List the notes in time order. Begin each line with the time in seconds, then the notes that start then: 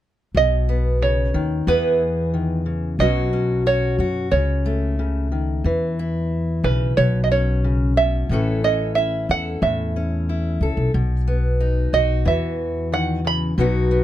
0.35 B1 B2 D#5
0.69 B3
1.02 C#3 C#5
1.34 D#2 D#3
1.67 E2 E3 B3 E4 G#4 B4
2.34 D#3
2.66 C#3
2.99 B1 B2 F#3 C#4 F#4 D#5
3.33 C#4
3.66 F#4 C#5
3.99 F#2 F#4
4.32 C#2 C#3 C#5
4.66 A3
4.99 C#3
5.32 D#3
5.64 E2 E3
5.99 E4
6.64 B1 C#3 B4
6.97 B1 B2 C#5
7.24 D#5
7.32 C#4 C#5
7.64 C#3
7.97 B2 E5
8.29 A1 A2 E3 C#4 E4
8.34 A4
8.64 C#4 D#5
8.95 E4 E5
9.29 E2 A4 F#5
9.62 E2 A2 E5
9.96 C#4
10.29 E4
10.61 C#2 A4
10.77 B1
10.94 B1 B2
11.28 B3
11.60 D#4
11.93 B1 F#4 D#5
12.25 E2 E3 E5
12.92 D#3 F#5
13.25 C#3 B5
13.58 B1 B2 F#3 B3 D#4 F#4
13.91 B3